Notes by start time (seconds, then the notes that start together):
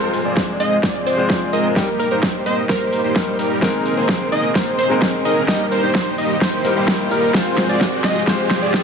Already playing: F3 G#3 C4 F4 G#4 C5, riser
0.13 open hi-hat
0.25 G#3 C4 F4 G#4 D5
0.37 kick, snare
0.60 G#3 C4 F4 G#4 D#5, open hi-hat
0.83 G#3 C4 F4 G#4 D5, kick, snare
1.06 C5, open hi-hat
1.17 G#3 C4 F4 G#4 C5 D5
1.30 kick, snare
1.53 G#3 C4 F4 G#4 A#4 D#5, open hi-hat
1.76 D#3 G3 A#3 D#4 G4 A#4, kick, snare
1.99 A#4, open hi-hat
2.11 G3 A#3 D#4 G4 A#4 C5
2.23 kick, snare
2.46 G3 A#3 D#4 G4 C5 D#5, open hi-hat
2.69 G3 A#3 D#4 G4 A#4 C5, kick, snare
2.93 open hi-hat
3.04 G3 A#3 D#4 G4 C5
3.15 G3 A#3 D#4 A#4, kick, snare
3.39 G3 A#3 D#4 G4 A#4, open hi-hat
3.61 G#3 A#3 C4 D#4 G#4 A#4, kick, snare
3.86 open hi-hat
3.97 A#3 C4 D#4 G#4 C5
4.09 kick, snare
4.32 A#3 C4 D#4 G#4 D#5, open hi-hat
4.55 A#3 C4 D#4 G#4 C5, kick, snare
4.79 C5, open hi-hat
4.89 G#3 A#3 C4 D#4 G#4 A#4 C5
5.02 kick, snare
5.25 A#3 C4 D#4 G#4 A#4 D#5, open hi-hat
5.48 G3 A#3 D#4 G4 A#4 D#5, kick, snare
5.72 C5, open hi-hat
5.83 G3 A#3 D#4 G4 C5
5.95 kick, snare
6.18 G3 A#3 D#4 G4 D#5, open hi-hat
6.41 G3 A#3 D#4 G4 C5, kick, snare
6.64 G3 A#3 D#4 A#4, open hi-hat
6.76 G3 A#3 D#4 G4 C5
6.88 kick, snare
7.11 G3 A#3 D#4 G4 A#4, open hi-hat
7.33 F3 G#3 C4 F4 G#4 C5, kick, snare, closed hi-hat, shaker
7.46 closed hi-hat, shaker
7.58 snare, open hi-hat, shaker
7.69 G#3 C4 F4 G#4 D5, closed hi-hat, shaker
7.81 kick, snare, closed hi-hat, shaker
7.93 closed hi-hat, shaker
8.04 G#3 C4 F4 G#4 D#5, snare, open hi-hat, shaker
8.16 closed hi-hat, shaker
8.26 G#3 C4 F4 G#4 C5, kick, snare, closed hi-hat, shaker
8.39 closed hi-hat, shaker
8.51 snare, open hi-hat, shaker
8.62 G#3 C4 F4 G#4 D5, closed hi-hat, shaker
8.74 kick, snare, closed hi-hat, shaker